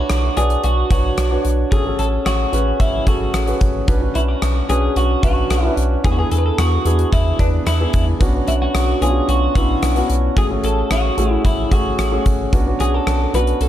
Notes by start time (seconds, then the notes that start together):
Already playing: D4 F#4 B4 C#5
0.10 B1, cross-stick, closed hi-hat
0.36 B1 D4 F#4 G#4 B4 D5, closed hi-hat
0.50 closed hi-hat
0.64 B1 F#4, closed hi-hat
0.90 B1 D4 F#4 B4 C#5, kick, closed hi-hat
1.18 B1, cross-stick, closed hi-hat
1.31 D4 F#4 B4 C#5
1.45 B1, closed hi-hat
1.71 A1 C#4 F#4 G#4 A4, kick, closed hi-hat
1.85 C#4 F#4 G#4 A4
1.99 A1 A4, closed hi-hat
2.26 A1 F#4, cross-stick, closed hi-hat
2.52 A1 C#4 F#4 G#4 B4, closed hi-hat
2.80 A1 E4, kick, closed hi-hat
3.06 A1 C#4 F#4 G#4 A4, kick, closed hi-hat
3.33 A1, cross-stick, closed hi-hat
3.47 C#4 F#4 G#4 B4, closed hi-hat
3.61 A1, kick, closed hi-hat
3.87 B1 C#4 D4 F#4 B4, kick, closed hi-hat
4.01 C#4 D4 F#4 B4
4.15 B1 E4, closed hi-hat
4.28 F#4
4.42 B1, cross-stick, closed hi-hat
4.69 B1 C#4 D4 F#4 G#4 B4, closed hi-hat
4.96 B1 F#4, closed hi-hat
5.23 B1 C#4 D4 F#4 B4, kick, closed hi-hat
5.50 B1, cross-stick, closed hi-hat
5.63 C#4 D4 F#4 B4
5.77 B1, closed hi-hat
6.04 E2 B3 D4 E4 G#4, kick, closed hi-hat
6.12 F#4
6.18 B3 D4 E4 G#4
6.31 E2 A4, closed hi-hat
6.38 B4
6.46 A4
6.58 E2 F#4, cross-stick, closed hi-hat
6.85 E2 B3 D4 E4 G#4, closed hi-hat
6.99 closed hi-hat
7.12 E2 E4, kick, closed hi-hat
7.39 E2 B3 D4 E4 B4, kick, closed hi-hat
7.66 E2 E4, cross-stick, closed hi-hat
7.80 B3 D4 E4 G#4
7.93 E2, kick, closed hi-hat
8.20 B1 B3 C#4 D4 F#4, kick, closed hi-hat
8.33 B3 C#4 D4 F#4
8.48 B1 E4, closed hi-hat
8.62 F#4
8.74 B1, cross-stick, closed hi-hat
9.01 B1 B3 C#4 D4 F4 G#4, closed hi-hat
9.09 F#4
9.28 B1 F#4, closed hi-hat
9.55 B1 B3 C#4 D4 E4 F#4, kick, closed hi-hat
9.82 B1, cross-stick, closed hi-hat
9.96 B3 C#4 D4 F#4, closed hi-hat
10.10 B1, closed hi-hat
10.36 A1 A3 C#4 F#4 G#4, kick, closed hi-hat
10.50 A3 C#4 F#4 G#4
10.63 A1 A4, closed hi-hat
10.91 A1 F#4, cross-stick, closed hi-hat
11.17 A1 A3 C#4 F#4 G#4, closed hi-hat
11.45 A1 E4, kick, closed hi-hat
11.71 A1 A3 C#4 F#4 G#4, kick, closed hi-hat
11.99 A1, cross-stick, closed hi-hat
12.11 A3 C#4 F#4 G#4
12.26 A1, kick, closed hi-hat
12.52 B1 B3 C#4 D4 F#4, kick, closed hi-hat
12.66 B3 C#4 D4 F#4
12.80 B1 G#4, closed hi-hat
12.94 A4
13.07 B1, cross-stick, closed hi-hat
13.33 B1 B3 C#4 D4 F#4 B4, closed hi-hat
13.47 closed hi-hat
13.61 B1 A4, closed hi-hat